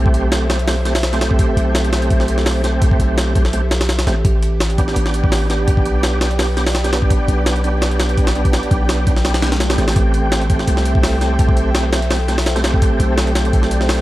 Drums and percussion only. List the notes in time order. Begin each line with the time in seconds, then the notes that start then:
0.06 kick
0.14 closed hi-hat
0.32 snare, closed hi-hat
0.50 snare, closed hi-hat
0.59 closed hi-hat
0.68 snare, open hi-hat
0.85 snare, closed hi-hat
0.95 snare, open hi-hat
1.03 snare, closed hi-hat
1.13 snare, closed hi-hat
1.21 snare, closed hi-hat
1.31 kick
1.39 kick, closed hi-hat
1.57 closed hi-hat
1.75 snare, closed hi-hat
1.84 closed hi-hat
1.93 snare, closed hi-hat
2.02 closed hi-hat
2.10 kick, closed hi-hat
2.20 snare
2.28 closed hi-hat
2.38 snare
2.46 snare, open hi-hat
2.64 snare, closed hi-hat
2.82 kick, closed hi-hat
2.91 kick
3.00 closed hi-hat
3.18 snare, closed hi-hat
3.35 kick, closed hi-hat
3.45 snare
3.53 closed hi-hat
3.71 snare, closed hi-hat
3.81 snare, closed hi-hat
3.89 snare, closed hi-hat
3.99 snare, closed hi-hat
4.07 snare, closed hi-hat
4.25 kick, closed hi-hat
4.43 closed hi-hat
4.60 snare, closed hi-hat
4.70 closed hi-hat
4.78 kick, closed hi-hat
4.88 snare
4.96 closed hi-hat
5.06 snare
5.14 closed hi-hat
5.24 kick
5.32 snare, open hi-hat
5.50 snare, closed hi-hat
5.68 kick, closed hi-hat
5.77 kick
5.85 closed hi-hat
6.03 snare, closed hi-hat
6.21 snare, closed hi-hat
6.31 closed hi-hat
6.39 snare, open hi-hat
6.57 snare, closed hi-hat
6.67 snare, open hi-hat
6.75 snare, closed hi-hat
6.84 snare, closed hi-hat
6.93 snare, closed hi-hat
7.02 kick
7.10 kick, closed hi-hat
7.28 closed hi-hat
7.46 snare, closed hi-hat
7.56 closed hi-hat
7.64 closed hi-hat
7.82 snare, closed hi-hat
7.91 closed hi-hat
8.00 snare, closed hi-hat
8.09 closed hi-hat
8.18 kick, closed hi-hat
8.27 snare, closed hi-hat
8.35 closed hi-hat
8.45 kick, closed hi-hat
8.53 snare, closed hi-hat
8.63 closed hi-hat
8.71 kick, closed hi-hat
8.89 snare, closed hi-hat
9.07 kick, closed hi-hat
9.16 snare
9.25 snare, closed hi-hat
9.34 snare, closed hi-hat
9.42 snare, closed hi-hat
9.52 snare, closed hi-hat
9.60 snare, closed hi-hat
9.70 snare, closed hi-hat
9.78 snare, closed hi-hat
9.88 snare, open hi-hat
9.96 kick, closed hi-hat
10.14 closed hi-hat
10.32 snare, closed hi-hat, open hi-hat
10.41 closed hi-hat
10.50 kick, closed hi-hat
10.59 snare
10.67 closed hi-hat
10.77 snare, closed hi-hat
10.85 closed hi-hat
10.95 kick
11.03 snare, closed hi-hat, open hi-hat
11.13 snare
11.21 snare, closed hi-hat
11.39 kick, closed hi-hat
11.49 kick
11.57 closed hi-hat
11.75 snare, closed hi-hat
11.93 snare, closed hi-hat
12.02 snare, closed hi-hat
12.10 snare, closed hi-hat, open hi-hat
12.28 snare, closed hi-hat
12.38 snare, open hi-hat
12.46 snare, closed hi-hat
12.56 snare, closed hi-hat
12.64 snare, closed hi-hat
12.74 kick, snare
12.82 kick, closed hi-hat
13.00 closed hi-hat
13.17 snare, closed hi-hat, open hi-hat
13.27 closed hi-hat
13.35 snare, closed hi-hat
13.45 closed hi-hat
13.53 kick, closed hi-hat
13.63 snare, closed hi-hat
13.71 closed hi-hat
13.81 snare
13.89 snare, closed hi-hat, open hi-hat